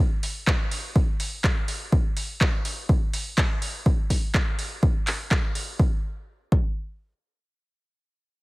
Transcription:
0.23 open hi-hat loud
0.47 kick loud
0.47 clap loud
0.71 open hi-hat medium
0.96 kick loud
1.20 open hi-hat loud
1.44 kick loud
1.44 clap loud
1.68 open hi-hat loud
1.92 kick loud
2.17 open hi-hat loud
2.41 kick loud
2.41 clap loud
2.65 open hi-hat loud
2.89 kick loud
3.13 open hi-hat loud
3.38 kick loud
3.38 clap loud
3.62 open hi-hat medium
3.86 kick loud
4.10 kick medium
4.10 open hi-hat loud
4.34 kick loud
4.34 clap loud
4.59 open hi-hat loud
4.83 kick loud
5.07 clap medium
5.07 open hi-hat loud
5.31 kick loud
5.31 clap loud
5.55 open hi-hat loud
5.79 kick loud
6.52 kick loud

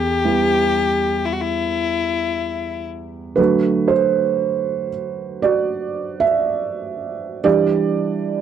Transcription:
0.00 3.34 E2 medium
0.00 1.27 G4 medium
0.24 3.34 G3 soft
0.24 3.34 B3 soft
0.24 3.34 E4 soft
1.26 1.34 E4 medium
1.33 1.42 F#4 medium
1.41 2.86 E4 medium
3.36 4.88 D3 soft
3.36 4.88 F#3 soft
3.36 4.89 A3 soft
3.36 5.39 F#4 medium
3.36 3.91 B4 medium
3.88 4.87 C5 medium
5.42 7.40 F#4 medium
5.42 6.21 D5 medium
6.20 7.48 E5 medium
7.44 8.41 E3 soft
7.44 8.41 G3 soft
7.44 8.41 D4 medium
7.44 8.41 G4 medium
7.44 8.41 D5 medium

